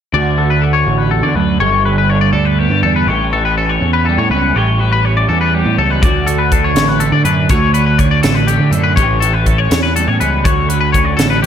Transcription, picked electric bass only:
0.13 0.83 D2 medium
0.86 1.21 A1 medium
1.23 1.34 D3 medium
1.35 1.58 D2 medium
1.59 2.30 G1 medium
2.33 2.67 D2 medium
2.70 2.82 G2 medium
2.83 3.06 E2 medium
3.07 3.77 A1 medium
3.81 4.15 E2 medium
4.18 4.29 A2 medium
4.30 4.53 C#2 medium
4.55 5.25 A1 loud
5.29 5.63 E2 medium
5.66 5.77 A2 medium
5.78 6.00 C#2 medium
6.03 6.72 D2 medium
6.75 7.10 A1 medium
7.12 7.24 D3 medium
7.25 7.48 F#2 medium
7.50 8.20 D2 loud
8.24 8.58 A1 medium
8.60 8.70 D3 medium
8.71 8.95 F#2 medium
8.97 9.67 A1 loud
9.71 10.05 E2 medium
10.08 10.19 A2 medium
10.21 10.44 C#2 medium
10.45 11.15 D2 medium
11.18 11.46 A1 medium

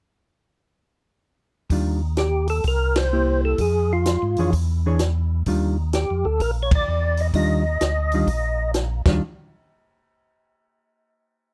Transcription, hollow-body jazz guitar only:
1.71 2.00 D#3 soft
1.71 2.00 G3 soft
1.71 2.00 D4 medium
1.71 2.00 F4 medium
3.13 3.60 A#3 medium
3.13 3.60 E4 medium
3.13 3.60 G4 medium
4.38 4.52 E3 medium
4.38 4.53 D4 medium
4.38 4.53 G#4 medium
4.38 4.53 C#5 medium
4.86 5.00 E3 medium
4.86 5.00 D4 medium
4.86 5.00 G#4 medium
4.86 5.00 C#5 medium
5.47 5.75 D#3 medium
5.47 5.76 G3 medium
5.47 5.76 D4 medium
5.47 5.76 F4 medium
7.34 7.62 D#3 medium
7.34 7.63 G3 medium
7.34 7.63 D4 medium
7.34 7.63 F4 medium
8.14 8.27 D#3 medium
8.14 8.28 G3 medium
8.14 8.28 D4 medium
8.14 8.28 F4 medium
9.07 9.21 D#3 medium
9.07 9.21 G3 medium
9.07 9.21 D4 medium
9.07 9.22 F4 medium

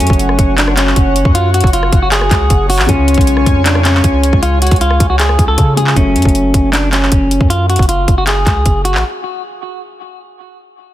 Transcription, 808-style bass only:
0.00 0.09 F#2 loud
0.10 0.38 F#1 loud
0.39 0.94 F#1 loud
0.96 1.24 F#1 loud
1.25 1.62 F#2 loud
1.64 1.92 F#1 loud
1.93 2.29 F#1 loud
2.31 2.50 C#2 loud
2.50 2.81 F#1 loud
2.79 2.88 A1 loud
2.89 3.16 C#2 loud
3.18 3.45 B1 loud
3.46 4.02 F2 loud
4.04 4.32 C#2 loud
4.33 4.70 C#2 loud
4.72 4.99 C#2 loud
5.00 5.37 C#2 loud
5.39 5.57 C#2 loud
5.58 5.95 C#3 loud
5.96 6.17 F#1 loud
6.16 6.25 F#2 loud
6.25 6.53 F#1 loud
6.54 7.10 F#1 loud
7.12 7.40 F#1 loud
7.41 7.78 F#2 loud
7.79 8.07 F#1 loud
8.08 8.45 F#1 loud
8.46 8.65 C#2 loud
8.66 8.96 F#1 loud
8.95 9.04 A1 loud

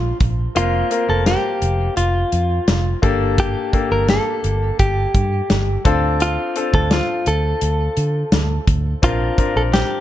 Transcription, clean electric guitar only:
0.00 0.17 F4 medium
0.57 1.06 F4 medium
1.10 1.27 A4 medium
1.27 1.97 G4 medium
1.97 2.99 F4 medium
3.40 3.91 G4 loud
3.92 4.09 A#4 loud
4.10 4.79 A4 medium
4.80 5.81 G4 medium
6.22 6.76 F4 medium
6.75 6.92 A4 loud
6.93 7.28 F4 medium
7.28 8.64 A4 medium
9.04 9.56 F4 medium
9.57 9.62 A4 loud
9.73 10.00 G4 medium

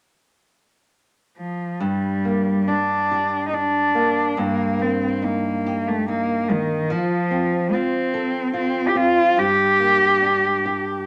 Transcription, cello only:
1.38 1.82 F3 medium
1.80 2.70 G3 medium
2.68 3.47 D4 medium
3.48 3.55 D#4 soft
3.54 4.40 D4 medium
4.38 4.83 A#3 medium
4.81 5.16 C4 medium
5.16 5.26 C4 soft
5.24 5.90 A#3 medium
5.88 6.09 A3 medium
6.09 6.53 A#3 medium
6.51 6.93 D#3 medium
6.92 7.75 F3 medium
7.74 8.54 C4 medium
8.55 8.90 C4 medium
8.88 8.98 G4 medium
8.97 9.41 F4 medium
9.39 11.06 G4 medium

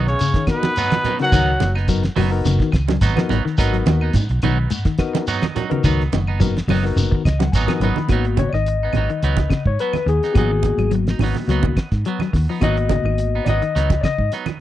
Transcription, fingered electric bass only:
0.00 0.14 B1 medium
1.33 1.56 C#2 loud
1.61 2.07 F#1 loud
2.17 2.40 F#1 medium
2.45 2.58 F#1 loud
2.74 2.97 C#2 medium
3.02 3.14 G#1 loud
3.29 3.41 G#1 medium
3.58 3.81 G#1 medium
3.86 4.09 D#2 medium
4.13 4.26 G#2 loud
4.30 4.40 B1 medium
4.43 4.66 B1 medium
5.84 6.07 C#2 loud
6.12 6.59 F#1 medium
6.67 6.91 F#1 medium
6.96 7.09 F#1 loud
7.25 7.48 C#2 medium
7.54 7.66 G#1 medium
7.80 7.93 G#1 medium
7.98 muted fingered electric bass stroke soft
8.10 8.45 G#1 medium
8.53 8.87 G#1 medium
8.95 9.07 G#1 medium
9.23 9.46 C#2 medium
9.66 9.77 G#2 medium
9.94 muted fingered electric bass stroke soft
10.06 10.19 D#2 medium
10.36 10.71 G#1 loud
10.77 11.12 G#1 medium
11.19 11.32 G#1 medium
11.48 11.71 C#2 medium
11.92 12.03 G#2 medium
12.19 muted fingered electric bass stroke soft
12.34 12.46 D#2 loud
12.62 12.98 G#1 medium
13.04 13.39 G#1 medium
13.47 13.59 G#1 medium
13.76 13.99 C#2 medium
14.18 14.29 G#2 medium
14.47 muted fingered electric bass stroke soft

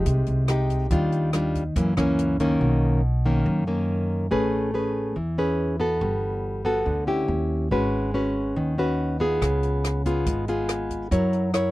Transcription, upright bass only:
0.06 0.26 C2 loud
0.28 0.87 C2 medium
0.91 1.72 D#2 medium
1.76 1.96 F#2 loud
1.97 2.57 C#2 medium
2.61 3.42 B1 medium
3.46 4.27 F#2 medium
4.31 5.12 A1 medium
5.16 5.97 E2 medium
6.01 6.82 G1 loud
6.86 7.25 D2 medium
7.28 7.68 D#2 medium
7.71 8.52 G#1 medium
8.56 9.37 D#2 medium
9.42 10.22 C#2 medium
10.27 11.07 G#1 medium
11.11 11.71 F#2 loud

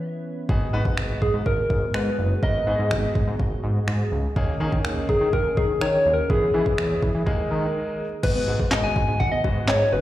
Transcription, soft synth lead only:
1.22 1.33 G#4 medium
1.46 1.96 A#4 medium
1.95 2.43 B4 medium
2.43 3.36 D#5 loud
5.09 5.35 G#4 medium
5.33 5.57 A#4 loud
5.57 5.83 G#4 medium
5.81 6.15 C#5 loud
6.14 6.29 A#4 medium
6.30 7.95 G#4 loud
8.23 8.35 B4 loud
8.35 8.73 B4 medium
8.72 8.85 D#5 loud
8.84 9.21 G#5 loud
9.20 9.33 F#5 loud
9.32 9.70 D#5 loud
9.68 9.94 C#5 medium
9.93 10.01 B4 medium

